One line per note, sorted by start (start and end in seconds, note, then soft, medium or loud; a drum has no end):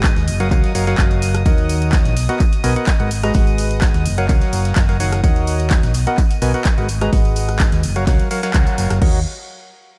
0.00 0.13 G#1 loud
0.00 0.26 G#3 medium
0.00 0.26 F#4 medium
0.00 0.26 G#4 medium
0.00 0.26 B4 medium
0.00 0.26 D#5 medium
0.00 9.03 D#5 medium
0.00 0.26 F#5 medium
0.00 9.03 D#6 medium
0.00 kick loud
0.00 clap loud
0.00 tambourine medium
0.04 snare loud
0.04 tambourine medium
0.16 0.29 D#2 medium
0.16 snare medium
0.16 closed hi-hat soft
0.16 tambourine soft
0.28 0.53 F#1 medium
0.28 open hi-hat loud
0.28 tambourine medium
0.40 0.49 F#3 medium
0.40 0.49 F#4 medium
0.40 0.49 A#4 medium
0.40 0.49 C#5 medium
0.40 0.49 F5 medium
0.40 0.49 F#5 medium
0.40 closed hi-hat medium
0.40 tambourine soft
0.51 0.61 C#2 medium
0.51 0.73 F#3 medium
0.51 0.73 F#4 medium
0.51 0.73 A#4 medium
0.51 0.73 C#5 medium
0.51 0.73 F5 medium
0.51 kick loud
0.51 clap soft
0.51 tambourine medium
0.64 snare soft
0.64 closed hi-hat soft
0.64 tambourine soft
0.75 0.94 F#1 medium
0.75 0.85 F#3 medium
0.75 0.85 F#4 medium
0.75 0.85 A#4 medium
0.75 0.85 C#5 medium
0.75 0.85 F5 medium
0.75 0.85 F#5 loud
0.75 open hi-hat loud
0.75 tambourine medium
0.75 tambourine loud
0.87 0.96 F#3 loud
0.87 0.96 F#4 medium
0.87 0.96 A#4 medium
0.87 0.96 C#5 medium
0.87 0.96 F5 medium
0.87 0.96 F#5 loud
0.87 snare medium
0.87 closed hi-hat medium
0.87 tambourine soft
0.98 1.42 F#1 loud
0.98 kick loud
0.98 snare loud
0.98 clap loud
0.98 tambourine medium
1.10 closed hi-hat soft
1.10 tambourine soft
1.22 open hi-hat loud
1.22 tambourine medium
1.22 tambourine loud
1.34 cross-stick medium
1.34 closed hi-hat medium
1.34 closed hi-hat soft
1.34 tambourine soft
1.45 2.02 D#2 loud
1.45 2.15 D#3 loud
1.45 2.15 F#4 medium
1.45 2.15 A#4 medium
1.45 2.15 C#5 medium
1.45 2.15 D#5 medium
1.45 2.15 F#5 loud
1.45 kick loud
1.45 ride medium
1.45 tambourine soft
1.45 tambourine medium
1.58 closed hi-hat soft
1.58 tambourine soft
1.69 open hi-hat loud
1.69 tambourine medium
1.69 tambourine loud
1.82 closed hi-hat medium
1.82 tambourine soft
1.93 kick loud
1.93 snare loud
1.93 clap loud
1.93 ride medium
1.93 tambourine medium
2.05 2.17 A#1 medium
2.05 snare medium
2.05 closed hi-hat medium
2.05 tambourine soft
2.17 2.27 B1 medium
2.17 snare medium
2.17 open hi-hat loud
2.17 tambourine medium
2.17 tambourine loud
2.29 2.44 B3 medium
2.29 2.44 F#4 medium
2.29 2.44 A#4 medium
2.29 2.44 B4 medium
2.29 2.44 D#5 medium
2.29 2.44 F#5 loud
2.29 closed hi-hat medium
2.29 tambourine soft
2.40 kick loud
2.40 clap soft
2.40 ride medium
2.40 tambourine medium
2.53 closed hi-hat soft
2.53 closed hi-hat medium
2.53 tambourine soft
2.64 2.74 B1 medium
2.64 2.74 B3 loud
2.64 2.74 F#4 medium
2.64 2.74 A#4 medium
2.64 2.74 B4 medium
2.64 2.74 D#5 medium
2.64 2.74 G#5 loud
2.64 open hi-hat loud
2.64 tambourine medium
2.64 tambourine loud
2.76 2.91 B3 medium
2.76 2.91 F#4 medium
2.76 2.91 A#4 medium
2.76 2.91 B4 medium
2.76 2.91 D#5 medium
2.76 2.91 F#5 loud
2.76 closed hi-hat medium
2.76 tambourine soft
2.87 kick loud
2.87 snare loud
2.87 clap loud
2.87 ride medium
2.87 tambourine medium
2.99 3.31 G#1 medium
2.99 3.10 G#3 medium
2.99 3.10 F#4 medium
2.99 3.10 A#4 medium
2.99 3.10 B4 medium
2.99 3.10 D#5 medium
2.99 3.10 F#5 medium
2.99 closed hi-hat soft
2.99 tambourine soft
3.11 open hi-hat loud
3.11 tambourine loud
3.11 tambourine medium
3.23 3.33 G#3 medium
3.23 3.33 F#4 medium
3.23 3.33 G#4 medium
3.23 3.33 B4 medium
3.23 3.33 D#5 medium
3.23 3.33 A#5 loud
3.23 cross-stick medium
3.23 closed hi-hat medium
3.23 tambourine soft
3.34 3.91 G#1 loud
3.34 4.04 G#3 medium
3.34 4.04 F#4 medium
3.34 4.04 B4 medium
3.34 4.04 F#5 medium
3.34 kick loud
3.34 open hi-hat medium
3.34 ride medium
3.34 tambourine medium
3.47 closed hi-hat soft
3.47 tambourine soft
3.58 open hi-hat loud
3.58 tambourine medium
3.71 closed hi-hat medium
3.71 tambourine soft
3.81 kick loud
3.81 snare loud
3.81 clap loud
3.81 ride medium
3.81 tambourine medium
3.94 4.07 D#2 medium
3.94 snare medium
3.94 closed hi-hat medium
3.94 tambourine soft
4.06 4.31 F#1 medium
4.06 open hi-hat loud
4.06 tambourine medium
4.18 4.26 F#3 medium
4.18 4.26 F#4 medium
4.18 4.26 A#4 medium
4.18 4.26 C#5 medium
4.18 4.26 F5 medium
4.18 4.26 F#5 loud
4.18 closed hi-hat medium
4.18 tambourine soft
4.29 4.39 C#2 loud
4.29 4.86 F#3 medium
4.29 4.86 F#4 medium
4.29 4.86 A#4 medium
4.29 4.86 C#5 medium
4.29 4.86 F5 medium
4.29 4.86 F#5 loud
4.29 kick loud
4.29 clap soft
4.29 ride medium
4.29 tambourine medium
4.41 snare soft
4.41 closed hi-hat medium
4.41 tambourine soft
4.53 4.72 F#1 medium
4.53 open hi-hat loud
4.53 tambourine medium
4.65 snare medium
4.65 closed hi-hat medium
4.65 tambourine soft
4.76 5.20 F#1 loud
4.76 kick loud
4.76 snare loud
4.76 clap loud
4.76 ride medium
4.76 tambourine soft
4.76 tambourine medium
4.89 4.97 F#3 medium
4.89 4.97 F#4 medium
4.89 4.97 A#4 medium
4.89 4.97 C#5 medium
4.89 4.97 F5 medium
4.89 4.97 F#5 medium
4.89 closed hi-hat soft
4.89 tambourine soft
5.00 5.21 D#3 medium
5.00 5.21 F#4 medium
5.00 5.21 A#4 medium
5.00 5.21 C#5 medium
5.00 5.21 F5 medium
5.00 5.21 F#5 medium
5.00 open hi-hat loud
5.00 tambourine medium
5.12 cross-stick medium
5.12 closed hi-hat medium
5.12 closed hi-hat soft
5.12 tambourine soft
5.24 5.80 D#2 medium
5.24 5.93 D#3 loud
5.24 5.93 F#4 medium
5.24 5.93 A#4 medium
5.24 5.93 C#5 medium
5.24 5.93 D#5 medium
5.24 5.93 F#5 loud
5.24 kick loud
5.24 ride medium
5.24 tambourine loud
5.24 tambourine soft
5.36 closed hi-hat soft
5.36 tambourine soft
5.47 open hi-hat loud
5.47 tambourine medium
5.59 closed hi-hat medium
5.59 tambourine soft
5.70 kick loud
5.70 snare loud
5.70 clap loud
5.70 ride medium
5.70 tambourine medium
5.83 5.94 A#1 medium
5.83 snare medium
5.83 closed hi-hat medium
5.83 tambourine soft
5.94 6.05 B1 medium
5.94 snare medium
5.94 open hi-hat loud
5.94 tambourine loud
5.94 tambourine medium
6.07 6.21 B3 medium
6.07 6.21 F#4 medium
6.07 6.21 A#4 medium
6.07 6.21 B4 medium
6.07 6.21 D#5 medium
6.07 6.21 F#5 loud
6.07 closed hi-hat medium
6.07 tambourine soft
6.18 kick loud
6.18 clap soft
6.18 ride medium
6.18 tambourine medium
6.31 closed hi-hat soft
6.31 closed hi-hat medium
6.31 tambourine soft
6.42 6.52 B1 medium
6.42 6.52 B3 loud
6.42 6.52 F#4 medium
6.42 6.52 A#4 medium
6.42 6.52 B4 medium
6.42 6.52 D#5 loud
6.42 6.52 G#5 loud
6.42 open hi-hat loud
6.42 tambourine medium
6.42 tambourine loud
6.54 6.69 B3 medium
6.54 6.69 F#4 medium
6.54 6.69 A#4 medium
6.54 6.69 B4 medium
6.54 6.69 D#5 medium
6.54 6.69 F#5 medium
6.54 closed hi-hat medium
6.54 tambourine soft
6.65 kick loud
6.65 snare loud
6.65 clap loud
6.65 ride medium
6.65 tambourine medium
6.78 7.09 G#1 medium
6.78 6.88 G#3 medium
6.78 6.88 F#4 medium
6.78 6.88 A#4 medium
6.78 6.88 B4 medium
6.78 6.88 D#5 medium
6.78 6.88 F#5 medium
6.78 closed hi-hat soft
6.78 tambourine soft
6.88 open hi-hat loud
6.88 tambourine loud
6.88 tambourine medium
7.01 7.11 G#3 medium
7.01 7.11 F#4 medium
7.01 7.11 G#4 medium
7.01 7.11 B4 medium
7.01 7.11 D#5 medium
7.01 7.11 A#5 loud
7.01 cross-stick medium
7.01 closed hi-hat medium
7.01 tambourine soft
7.13 7.69 G#1 loud
7.13 7.82 F#4 medium
7.13 7.82 G#4 medium
7.13 7.82 B4 medium
7.13 7.82 D#5 medium
7.13 7.82 F#5 medium
7.13 kick loud
7.13 open hi-hat medium
7.13 ride medium
7.13 tambourine soft
7.25 closed hi-hat soft
7.25 tambourine soft
7.36 open hi-hat loud
7.36 tambourine medium
7.49 cross-stick medium
7.49 closed hi-hat medium
7.49 tambourine soft
7.59 kick loud
7.59 snare loud
7.59 clap loud
7.59 ride medium
7.59 tambourine medium
7.72 7.85 D#2 medium
7.72 snare medium
7.72 closed hi-hat medium
7.72 tambourine soft
7.83 8.09 F#1 medium
7.83 open hi-hat loud
7.83 tambourine medium
7.96 8.04 F#3 medium
7.96 8.04 F#4 medium
7.96 8.04 A#4 medium
7.96 8.04 C#5 medium
7.96 8.04 F5 medium
7.96 8.04 F#5 medium
7.96 closed hi-hat medium
7.96 tambourine soft
8.07 8.17 C#2 loud
8.07 8.29 F#3 loud
8.07 8.29 F#4 medium
8.07 8.29 A#4 medium
8.07 8.29 C#5 medium
8.07 8.29 F5 medium
8.07 8.29 F#5 loud
8.07 kick loud
8.07 snare loud
8.07 clap soft
8.07 ride medium
8.07 tambourine medium
8.19 closed hi-hat medium
8.19 tambourine soft
8.31 8.41 F#3 medium
8.31 8.41 F#4 medium
8.31 8.41 A#4 medium
8.31 8.41 C#5 medium
8.31 8.41 F5 medium
8.31 8.41 F#5 loud
8.31 open hi-hat loud
8.31 tambourine medium
8.43 8.52 F#3 loud
8.43 8.52 F#4 medium
8.43 8.52 A#4 medium
8.43 8.52 C#5 medium
8.43 8.52 F5 medium
8.43 8.52 F#5 loud
8.43 snare loud
8.43 closed hi-hat medium
8.43 tambourine soft
8.43 tambourine medium
8.54 8.65 C#2 medium
8.54 8.99 F#3 medium
8.54 8.99 F#4 medium
8.54 8.99 C#5 medium
8.54 kick loud
8.54 clap loud
8.54 ride medium
8.54 tambourine soft
8.66 closed hi-hat soft
8.66 tambourine soft
8.66 tambourine medium
8.78 8.88 F#1 medium
8.78 open hi-hat loud
8.78 tambourine medium
8.90 9.00 F#1 medium
8.90 cross-stick medium
8.90 closed hi-hat medium
8.90 closed hi-hat soft
8.90 tambourine soft
9.02 9.24 D#2 loud
9.02 9.19 F#4 medium
9.02 9.19 A#4 medium
9.02 9.19 C#5 medium
9.02 9.19 D#5 medium
9.02 9.19 F#5 medium
9.02 kick loud
9.02 crash medium